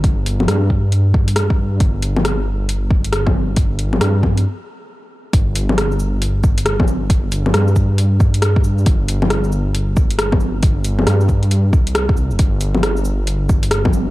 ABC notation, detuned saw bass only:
X:1
M:4/4
L:1/16
Q:"Swing 16ths" 1/4=136
K:Cdor
V:1 name="Detuned saw bass" clef=bass
G,,,4 G,,12 | G,,,16- | G,,,4 G,,4 z8 | G,,,16- |
G,,,4 G,,12 | G,,,16- | G,,,4 G,,6 C,,4- C,, F,,, | G,,,16 |]